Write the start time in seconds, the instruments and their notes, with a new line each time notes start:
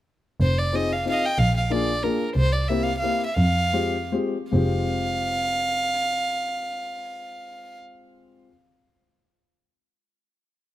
0.40 double bass F1, violin C5
0.58 violin D5
0.73 upright piano C4 D#4 F4 G#4, violin D#5
0.92 violin F5
1.05 upright piano C4 D#4 F4 G#4, violin F5
1.12 violin D#5
1.17 violin F5
1.25 violin G5
1.38 double bass A#1, violin F5
1.57 violin F5
1.70 upright piano A#3 D4 F4 G#4, violin D5
2.03 upright piano A#3 D4 F4 G#4, violin A#4
2.36 double bass C2, violin C5
2.52 violin D5
2.68 upright piano A#3 C4 E4 G4, violin E5
2.83 violin F5
2.99 upright piano A#3, violin F5
3.03 upright piano C4 E4 G4
3.26 violin E5
3.34 double bass F2, violin F5
3.73 upright piano G#3 C4 F4 G4
4.12 upright piano G#3 C4 F4 G4
4.51 double bass F1, upright piano G#3 C4 F4, violin F5
4.56 upright piano G4